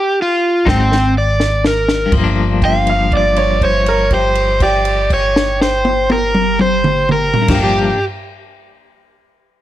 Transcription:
0.00 0.19 G4 medium
0.22 0.66 F4 medium
0.65 2.08 G#1 medium
0.65 0.95 G#2 soft
0.65 0.95 F#3 soft
0.65 0.95 C4 medium
0.65 1.14 C4 medium
0.65 0.94 D#4 medium
0.65 1.14 G5 medium
0.65 kick medium
0.65 snare medium
0.92 snare medium
1.18 1.63 D5 medium
1.40 snare medium
1.64 2.13 A#4 medium
1.64 snare medium
1.88 snare medium
2.06 7.33 G2 medium
2.12 7.32 G1 medium
2.12 7.37 F3 medium
2.12 kick medium
2.12 crash medium
2.18 7.39 A#3 medium
2.24 7.42 D4 medium
2.62 3.12 F5 medium
2.62 2.85 G5 medium
2.62 kick medium
2.62 crash soft
2.87 3.11 F5 medium
2.87 crash soft
3.12 3.35 D5 medium
3.12 kick medium
3.12 crash soft
3.17 3.62 D5 medium
3.36 3.60 C#5 medium
3.36 crash soft
3.61 3.85 C5 medium
3.61 4.11 C#5 medium
3.61 kick medium
3.61 crash soft
3.86 4.10 A#4 medium
3.86 crash soft
4.11 4.60 G4 medium
4.11 4.61 C5 medium
4.11 kick medium
4.11 crash soft
4.35 crash soft
4.60 7.33 G4 medium
4.60 5.10 D5 medium
4.60 kick medium
4.60 crash soft
4.85 crash soft
5.10 5.60 C#5 medium
5.10 kick medium
5.10 crash soft
5.36 snare medium
5.61 6.09 C5 medium
5.61 snare medium
5.85 high tom medium
6.10 6.59 A#4 medium
6.10 high tom medium
6.35 mid tom medium
6.59 7.08 C5 medium
6.59 mid tom medium
6.84 mid tom loud
7.09 7.58 A#4 medium
7.09 mid tom medium
7.34 floor tom medium
7.42 7.90 G2 medium
7.48 7.90 G1 medium
7.48 7.93 F3 medium
7.48 7.93 G4 medium
7.48 kick medium
7.48 snare medium
7.48 crash medium
7.55 7.96 A#3 medium
7.60 7.99 D4 medium
7.60 8.04 G4 medium

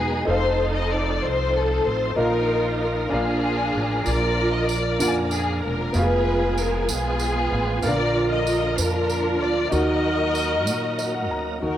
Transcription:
0.00 0.24 E1 medium
0.00 0.29 B2 medium
0.00 0.24 F#3 medium
0.00 0.24 B3 soft
0.00 0.24 B3 medium
0.00 0.22 D#4 medium
0.00 0.23 D#4 medium
0.00 0.24 D#4 medium
0.00 0.23 F#4 medium
0.00 0.28 G#4 loud
0.00 0.27 D#5 medium
0.00 0.25 F#5 medium
0.25 1.18 F1 medium
0.25 2.12 F3 medium
0.25 2.12 C4 medium
0.25 2.11 D#4 medium
0.25 2.12 D#4 medium
0.25 1.18 D#4 medium
0.25 0.34 G#4 soft
0.25 2.12 A4 medium
0.25 1.18 A4 medium
0.25 0.71 C5 loud
0.25 2.13 C5 medium
0.30 2.14 F5 medium
0.34 2.16 A4 medium
0.75 0.91 D#5 medium
0.91 1.22 D5 medium
1.22 1.81 C2 medium
1.22 1.54 C5 loud
1.55 1.85 A4 medium
1.85 2.14 A1 medium
1.85 2.17 C5 medium
2.16 3.07 A#1 medium
2.16 3.07 A#2 medium
2.16 3.09 F3 medium
2.16 3.09 A#3 medium
2.16 2.24 D4 soft
2.16 3.11 D#4 medium
2.16 3.07 D#4 medium
2.16 3.09 F4 medium
2.16 3.07 F4 medium
2.16 2.75 A#4 medium
2.16 3.11 A#4 medium
2.16 3.09 A#4 medium
2.16 2.24 D#5 medium
2.24 3.15 D#4 medium
2.24 3.13 F5 medium
2.79 3.08 A#4 medium
3.09 3.70 A#1 loud
3.09 5.90 F3 medium
3.09 5.90 A#3 medium
3.09 4.02 A#3 medium
3.09 3.17 B3 soft
3.09 4.95 D4 medium
3.09 4.01 D4 medium
3.09 4.01 F4 medium
3.09 4.96 F4 medium
3.09 4.05 G#4 medium
3.09 5.90 A#4 medium
3.09 4.97 A#4 medium
3.14 5.93 D4 medium
3.14 4.98 F5 medium
3.74 4.03 A1 medium
4.05 4.96 A#1 loud
4.05 4.96 F4 medium
4.05 4.96 A#4 medium
4.05 4.53 D5 loud
4.05 tambourine soft
4.53 4.68 D#5 medium
4.67 4.98 D5 medium
4.67 tambourine medium
4.99 5.90 A#2 medium
4.99 5.94 D4 medium
4.99 5.93 F4 medium
4.99 5.95 A#4 medium
4.99 5.14 D5 loud
4.99 5.07 F#5 medium
4.99 tambourine medium
5.08 5.98 G#5 medium
5.31 5.61 G#4 medium
5.31 tambourine medium
5.63 5.92 E1 medium
5.63 5.92 A#4 medium
5.93 6.85 F1 loud
5.93 7.80 F3 medium
5.93 7.80 G#3 medium
5.93 7.79 B3 medium
5.93 7.80 B3 medium
5.93 7.80 F4 medium
5.93 6.86 F4 medium
5.93 6.02 F#4 soft
5.93 7.80 G#4 medium
5.93 6.86 G#4 medium
5.93 6.58 B4 loud
5.93 tambourine soft
5.98 7.81 F5 medium
6.02 7.84 G#4 medium
6.58 6.89 A#4 medium
6.58 tambourine soft
6.89 7.48 B1 medium
6.89 7.80 B3 medium
6.89 7.80 F4 medium
6.89 7.83 G#4 medium
6.89 tambourine loud
7.19 tambourine medium
7.52 7.81 A1 medium
7.82 8.74 A#1 loud
7.82 8.74 A#2 medium
7.82 9.69 D3 medium
7.82 9.68 F3 medium
7.82 9.68 A#3 medium
7.82 7.89 B3 medium
7.82 9.68 F4 medium
7.82 8.74 F4 medium
7.82 9.68 A#4 medium
7.82 8.31 A#4 medium
7.82 9.70 A#4 medium
7.82 8.27 D5 loud
7.82 tambourine soft
7.87 9.71 D3 medium
7.87 9.71 F5 medium
8.32 8.78 A#4 medium
8.32 8.78 D#5 medium
8.47 tambourine medium
8.78 9.41 F2 medium
8.78 9.69 D4 medium
8.78 9.69 F4 medium
8.78 9.41 A#4 medium
8.78 tambourine loud
9.09 tambourine medium
9.41 9.70 D2 medium
9.41 9.72 D5 medium
9.69 10.67 D#2 loud
9.69 10.63 D#3 medium
9.69 11.56 D#4 medium
9.69 11.57 F#4 medium
9.69 11.58 A#4 medium
9.69 11.26 D#5 loud
9.69 tambourine soft
9.73 11.59 F#3 medium
9.73 11.59 A#3 medium
9.73 11.59 D#4 medium
9.73 11.27 F#4 medium
9.73 11.27 A#4 medium
9.73 11.59 A#4 medium
9.73 11.13 F#5 medium
10.35 tambourine medium
10.67 11.30 A#2 medium
10.67 tambourine medium
10.98 11.13 D#5 medium
10.98 tambourine medium
11.14 11.29 F#5 medium
11.30 11.59 D2 medium
11.30 11.60 A#5 medium
11.60 11.78 D#2 medium
11.60 11.78 D#3 soft
11.60 11.78 D#4 soft
11.60 11.78 D#4 medium
11.60 11.78 F#4 soft
11.60 11.78 F#4 medium
11.60 11.78 A#4 medium
11.60 11.78 A#4 soft
11.66 11.78 F#5 soft

